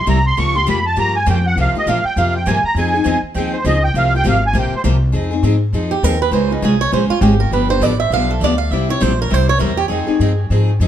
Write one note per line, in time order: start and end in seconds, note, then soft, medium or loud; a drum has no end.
0.06 0.36 C2 medium
0.06 0.18 C3 medium
0.06 0.18 G3 medium
0.06 0.18 A#3 medium
0.06 0.18 E4 medium
0.06 0.18 G4 medium
0.06 0.25 A#5 medium
0.27 0.38 C6 loud
0.37 0.67 C#2 medium
0.37 0.54 C#3 medium
0.37 0.55 F3 medium
0.37 0.55 A#3 medium
0.37 0.54 F4 medium
0.37 0.53 G4 medium
0.37 0.55 C#6 loud
0.55 0.67 A#3 soft
0.55 0.67 F4 medium
0.55 0.67 G4 medium
0.55 0.68 C6 loud
0.67 0.96 F2 medium
0.67 0.78 C#3 medium
0.67 0.78 F3 medium
0.67 0.78 A#3 medium
0.67 0.79 F4 medium
0.67 0.79 G4 medium
0.67 0.85 B5 medium
0.86 0.98 A5 medium
0.96 1.26 G2 medium
0.96 1.16 C#3 medium
0.96 1.16 F3 medium
0.96 1.16 A#3 medium
0.96 1.16 F4 medium
0.96 1.17 G4 medium
0.96 1.15 A#5 loud
1.16 1.27 G#5 medium
1.26 1.55 F2 loud
1.26 1.37 C#3 medium
1.26 1.37 F3 medium
1.26 1.37 A#3 loud
1.26 1.37 F4 medium
1.26 1.38 G4 medium
1.30 1.46 G5 medium
1.47 1.58 F#5 loud
1.56 1.73 C2 medium
1.56 1.74 C3 medium
1.56 1.74 F3 medium
1.56 1.74 A#3 medium
1.56 1.74 F4 medium
1.56 1.74 G4 medium
1.56 1.77 C5 medium
1.60 1.76 F5 medium
1.74 1.87 A#3 soft
1.74 1.87 F4 medium
1.74 1.87 G4 medium
1.74 muted upright bass stroke soft
1.78 1.88 D#5 medium
1.86 2.03 A#1 medium
1.86 1.98 C3 medium
1.86 1.98 F3 medium
1.86 1.98 A#3 medium
1.86 1.99 F4 medium
1.86 1.98 G4 loud
1.86 1.98 C5 medium
1.86 2.05 F5 medium
2.04 2.17 G5 loud
2.04 muted upright bass stroke soft
2.16 2.45 F2 medium
2.16 2.36 C3 medium
2.16 2.36 F3 medium
2.16 2.36 A#3 medium
2.16 2.37 F4 medium
2.16 2.36 G4 medium
2.16 2.37 C5 medium
2.16 2.34 F5 medium
2.36 2.47 G5 loud
2.46 2.63 G2 medium
2.46 2.58 C3 medium
2.46 2.58 F3 medium
2.46 2.58 A#3 medium
2.46 2.58 F4 medium
2.46 2.58 G4 medium
2.46 2.57 C5 loud
2.46 2.64 G#5 medium
2.63 2.76 A#5 loud
2.63 muted upright bass stroke soft
2.75 3.04 F2 medium
2.75 2.94 F3 medium
2.75 2.94 C4 medium
2.75 2.94 D#4 medium
2.75 2.93 G#4 medium
2.75 3.21 G#5 medium
2.94 3.05 C4 soft
2.94 3.05 D#4 medium
2.94 3.06 G#4 medium
3.05 3.22 E2 loud
3.05 3.16 F3 medium
3.05 3.17 C4 medium
3.05 3.17 D#4 medium
3.05 3.17 G#4 medium
3.23 muted upright bass stroke soft
3.35 3.64 D#2 medium
3.35 3.55 F3 medium
3.35 3.56 C4 medium
3.35 3.56 D#4 medium
3.35 3.56 G#4 medium
3.35 3.53 G5 medium
3.53 3.65 C5 medium
3.65 3.94 C#2 loud
3.65 3.76 F3 medium
3.65 3.76 C4 medium
3.65 3.77 D#4 medium
3.65 3.77 G#4 loud
3.65 3.83 D#5 medium
3.84 3.95 G5 loud
3.94 4.24 C2 medium
3.94 4.13 C3 medium
3.94 4.13 F3 medium
3.94 4.13 A#3 medium
3.94 4.13 F4 medium
3.94 4.13 G4 medium
3.94 4.15 C5 medium
3.94 4.13 F5 medium
4.15 4.26 A#3 medium
4.15 4.26 F4 medium
4.15 4.26 G4 medium
4.15 4.26 G5 loud
4.24 4.53 G#1 loud
4.24 4.36 C3 medium
4.24 4.36 F3 medium
4.24 4.36 A#3 medium
4.24 4.36 F4 medium
4.24 4.37 G4 medium
4.24 4.36 C5 medium
4.29 4.44 F5 medium
4.47 4.57 G#5 loud
4.53 4.70 A#1 medium
4.53 4.74 C3 medium
4.53 4.74 F3 medium
4.53 4.74 A#3 medium
4.53 4.74 F4 medium
4.53 4.74 G4 medium
4.53 4.74 C5 medium
4.59 4.74 G5 medium
4.72 4.82 C5 medium
4.72 muted upright bass stroke soft
4.84 5.13 C2 loud
4.84 4.95 C3 medium
4.84 4.95 F3 medium
4.84 4.95 A#3 loud
4.84 4.95 F4 loud
4.84 4.96 G4 medium
4.84 4.95 C5 medium
5.12 5.42 F2 medium
5.12 5.30 F3 medium
5.12 5.31 C4 medium
5.12 5.31 D#4 medium
5.12 5.29 G#4 medium
5.31 5.43 C4 soft
5.31 5.43 D#4 soft
5.31 5.43 G#4 medium
5.43 5.72 G#2 medium
5.43 5.54 F3 medium
5.43 5.55 C4 medium
5.43 5.55 D#4 medium
5.43 5.55 G#4 medium
5.73 6.02 F2 medium
5.73 5.93 F3 medium
5.73 5.93 C4 medium
5.73 5.94 D#4 medium
5.73 5.94 G#4 medium
5.91 6.04 G4 medium
6.03 6.31 D#2 medium
6.03 6.14 F3 medium
6.03 6.14 C4 medium
6.03 6.15 D#4 medium
6.03 6.14 G#4 medium
6.03 6.21 A#4 medium
6.22 6.33 B4 medium
6.31 6.61 C#2 medium
6.31 6.49 C#3 medium
6.31 6.49 G#3 medium
6.31 6.50 C#4 medium
6.31 6.50 F4 medium
6.31 6.49 G#4 medium
6.31 6.50 C5 medium
6.51 6.62 C#4 soft
6.51 6.64 D#4 soft
6.51 6.61 F4 medium
6.51 6.62 G#4 medium
6.62 6.92 C2 medium
6.62 6.73 C#3 medium
6.62 6.73 G#3 medium
6.62 6.74 C#4 medium
6.62 6.73 F4 loud
6.62 6.74 G#4 medium
6.62 6.81 G#4 medium
6.81 6.93 C#5 loud
6.92 7.09 A#1 medium
6.92 7.12 C#3 medium
6.92 7.11 G#3 medium
6.92 7.12 C#4 medium
6.92 7.12 F4 medium
6.92 7.12 G#4 medium
6.92 7.04 C5 medium
7.09 7.21 F4 medium
7.09 muted upright bass stroke soft
7.21 7.51 G#1 loud
7.21 7.33 C#3 medium
7.21 7.33 G#3 medium
7.21 7.33 C#4 medium
7.21 7.33 F4 medium
7.21 7.39 G4 medium
7.21 7.33 G#4 medium
7.40 7.52 A#4 medium
7.51 7.80 G1 medium
7.51 7.69 D3 medium
7.51 7.69 F3 medium
7.51 7.70 B3 medium
7.51 7.69 D4 medium
7.51 7.68 G4 medium
7.51 7.70 B4 medium
7.69 7.81 B3 soft
7.69 7.81 D4 medium
7.69 7.81 G4 medium
7.69 7.83 C5 loud
7.80 8.10 A1 medium
7.80 7.92 D3 medium
7.80 7.93 F3 medium
7.80 7.93 B3 medium
7.80 7.93 D4 medium
7.80 7.93 G4 medium
7.80 7.99 D5 medium
8.00 8.12 E5 medium
8.10 8.40 B1 medium
8.10 8.32 D3 medium
8.10 8.32 F3 medium
8.10 8.32 B3 medium
8.10 8.32 D4 medium
8.10 8.32 G4 medium
8.10 8.30 F5 loud
8.31 8.42 A4 medium
8.40 8.70 D2 medium
8.40 8.53 D3 medium
8.40 8.53 F3 medium
8.40 8.54 B3 loud
8.40 8.54 G4 medium
8.40 8.58 D5 medium
8.44 8.54 D4 medium
8.58 8.72 F5 medium
8.71 9.00 C2 medium
8.71 8.89 C3 medium
8.71 8.89 G3 medium
8.71 8.89 C4 medium
8.71 8.89 E4 medium
8.71 8.88 G4 medium
8.71 8.89 E5 medium
8.89 9.00 C4 medium
8.89 9.00 E4 medium
8.89 9.00 G4 medium
8.89 9.02 C#5 loud
9.01 9.31 A#1 medium
9.01 9.12 C3 medium
9.01 9.12 G3 medium
9.01 9.12 C4 medium
9.01 9.12 E4 medium
9.01 9.12 G4 medium
9.01 9.19 C5 medium
9.22 9.34 A#4 medium
9.30 9.60 C2 medium
9.30 9.50 C3 medium
9.30 9.50 G3 medium
9.30 9.50 C4 medium
9.30 9.50 E4 medium
9.30 9.50 G4 medium
9.34 9.49 C5 medium
9.49 9.60 C#5 loud
9.59 9.89 E2 loud
9.59 9.71 C3 medium
9.59 9.71 G3 medium
9.59 9.71 C4 medium
9.59 9.71 E4 medium
9.59 9.71 G4 loud
9.59 9.78 A#4 medium
9.77 9.88 G4 medium
9.88 10.07 F2 medium
9.88 10.07 F3 medium
9.88 10.07 C4 medium
9.88 10.06 D#4 medium
9.88 10.45 G#4 medium
9.88 10.05 G#4 medium
10.07 10.20 C4 medium
10.07 10.20 D#4 medium
10.07 10.19 G#4 medium
10.07 muted upright bass stroke soft
10.20 10.49 G2 medium
10.20 10.31 F3 medium
10.20 10.31 C4 medium
10.20 10.32 D#4 medium
10.20 10.31 G#4 medium
10.50 10.79 G#2 medium
10.50 10.70 F3 medium
10.50 10.70 C4 medium
10.50 10.70 D#4 medium
10.50 10.70 G#4 medium
10.80 10.88 F2 medium
10.80 10.88 F3 medium
10.80 10.88 C4 medium
10.80 10.88 D#4 medium
10.80 10.88 G#4 loud